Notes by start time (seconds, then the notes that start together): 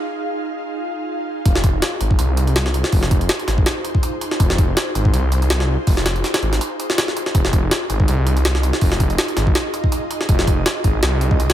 Already playing: D#4 F4 G#4 F5
1.46 F1 D#4 F4 G#4 C5, kick, closed hi-hat
1.56 snare
1.64 kick, closed hi-hat
1.82 snare, closed hi-hat
2.01 G#1, closed hi-hat
2.11 kick
2.19 C2, closed hi-hat
2.37 closed hi-hat
2.47 closed hi-hat
2.56 snare, closed hi-hat
2.66 snare
2.74 closed hi-hat
2.84 snare
2.92 F1, kick, open hi-hat
3.03 snare
3.11 kick, closed hi-hat
3.21 closed hi-hat
3.29 snare, closed hi-hat
3.39 closed hi-hat
3.48 G#1, snare, closed hi-hat
3.58 kick
3.66 snare, closed hi-hat
3.85 closed hi-hat
3.95 kick
4.03 closed hi-hat
4.21 closed hi-hat
4.31 snare
4.40 F1, kick, closed hi-hat
4.50 snare
4.58 kick, closed hi-hat
4.77 snare, closed hi-hat
4.95 G#1, closed hi-hat
5.05 kick
5.13 C2, closed hi-hat
5.32 closed hi-hat
5.42 closed hi-hat
5.50 snare, closed hi-hat
5.60 snare
5.87 F1, kick, open hi-hat
5.97 snare
6.06 snare, closed hi-hat
6.16 closed hi-hat
6.24 snare, closed hi-hat
6.34 snare, closed hi-hat
6.42 G#1, closed hi-hat
6.53 snare, closed hi-hat
6.61 closed hi-hat
6.80 closed hi-hat
6.90 snare
6.98 snare, closed hi-hat
7.08 snare
7.17 closed hi-hat
7.26 snare
7.35 F1 D#5, kick, closed hi-hat
7.45 snare
7.53 kick, closed hi-hat
7.71 snare, closed hi-hat
7.90 G#1, closed hi-hat
8.00 kick
8.08 C2, closed hi-hat
8.27 closed hi-hat
8.37 closed hi-hat
8.45 snare, closed hi-hat
8.55 snare
8.63 closed hi-hat
8.73 snare
8.81 F1, kick, open hi-hat
8.92 snare
9.00 kick, closed hi-hat
9.10 closed hi-hat
9.18 snare, closed hi-hat
9.28 closed hi-hat
9.37 G#1, snare, closed hi-hat
9.47 kick
9.55 snare, closed hi-hat
9.74 closed hi-hat
9.84 kick
9.92 closed hi-hat
10.11 closed hi-hat
10.21 snare
10.29 F1, kick, closed hi-hat
10.39 snare
10.47 kick, closed hi-hat
10.66 snare, closed hi-hat
10.84 G#1, kick, closed hi-hat
11.03 C2, snare, closed hi-hat
11.21 closed hi-hat
11.31 kick
11.40 closed hi-hat
11.50 snare, closed hi-hat